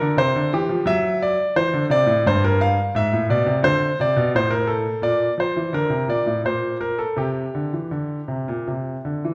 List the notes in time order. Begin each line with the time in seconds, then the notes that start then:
Already playing: A#4
0.01 D3
0.17 C3 C5
0.36 D3
0.53 E3 G4
0.69 F3
0.86 F#3 E5
1.22 D5
1.56 E3 C5
1.74 D3
1.90 C3 D5
2.06 A2
2.26 G2 C5
2.44 A#4
2.61 F5
2.95 G#2 E5
3.13 A2
3.30 B2 D5
3.46 C3
3.63 D3 C5
4.00 C3 D5
4.16 B2
4.35 A2 C5
4.51 A#4
4.67 A4
5.02 A#2 D5
5.38 F3 C5
5.56 E3
5.73 D3 A#4
5.90 C3
6.08 A#2 D5
6.26 A2
6.44 A#2 C5
6.81 A#4
6.98 A4
7.16 C3 G4
7.55 D3
7.73 E3
7.91 D3
8.28 C3
8.48 A#2
8.68 C3
9.05 D3
9.25 E3